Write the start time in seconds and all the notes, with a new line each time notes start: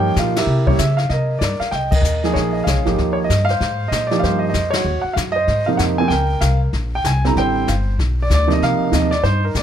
Already playing: G2 F3 A#3 D#4 G4 A#4 C#5 G5
0.16 A#2 F5, kick, snare, hi-hat pedal
0.21 F4
0.36 E4 G4 A#4 E5, snare, ride
0.46 C3, brush sweep
0.66 G3 A#3 C#4 G4 C#5, kick
0.79 C#3 E5, kick, snare, hi-hat pedal
0.97 F5, snare
1.09 C3 A#4 D#5, brush sweep, kick, snare
1.39 G2 D5, kick, snare, hi-hat pedal
1.60 F5, muted upright bass stroke, snare
1.71 C2 D#5 G5, brush sweep, kick, snare
1.91 D#5, kick, ride
1.95 A#4
2.02 D#2, hi-hat pedal
2.24 F3 A#3 D#4 G#4, snare
2.34 A#1 C#5, brush sweep, kick, snare
2.39 G#4
2.53 D#5
2.64 C2 F5, kick, snare, hi-hat pedal
2.69 C#5
2.75 A#1
2.85 G#1 F3 A#3 D#4 G4, snare
2.98 D#2, brush sweep, kick, snare
3.13 C#5
3.24 D#5
3.29 G2, kick, snare, hi-hat pedal
3.45 F5, snare
3.51 C5
3.60 G#2, brush sweep, kick, snare
3.88 A#2 D#5, kick, snare, hi-hat pedal
4.07 D5
4.11 F3 A#3 D#4 G4, snare
4.19 G2 F5, kick
4.23 C5, brush sweep, snare
4.39 D#5
4.49 D#5
4.54 F2, kick, snare, hi-hat pedal
4.71 C#5, snare, ride
4.76 F#4
4.84 D#2, brush sweep
5.02 F#5, muted upright bass stroke
5.13 F#2 F5, kick, snare, hi-hat pedal
5.32 D#5
5.36 C5
5.47 G#2, brush sweep, kick, snare
5.66 C3 F3 A#3 D#4 F5
5.77 F2 F#5, kick, snare, hi-hat pedal
5.98 C3 F3 A#3 C4 G#5
6.08 C#2 A#4 G5, brush sweep, kick, snare
6.41 C2 F5, kick, snare, hi-hat pedal
6.73 A#1, brush sweep, kick, snare
6.95 G5
7.04 C2 G#5, kick, snare, hi-hat pedal
7.24 D3 G3 C4 E4 A#5, snare
7.36 A1 C5 G5, brush sweep, kick, snare
7.67 G1 F5, kick, snare, hi-hat pedal
7.99 B1, brush sweep, kick, snare
8.22 D5
8.30 D2, kick, snare, hi-hat pedal
8.34 D5
8.47 C3 F3 A#3 D#4, snare
8.53 D#5
8.61 C2 A#4 F5, brush sweep, kick, snare
8.79 muted upright bass stroke
8.91 D#2 C3 F3 A#3 D#4 D#5, kick, snare, hi-hat pedal
9.11 D5, snare
9.23 G2 D#4 C5, brush sweep, kick, snare
9.45 A#4
9.55 A#2 D5, kick, snare, hi-hat pedal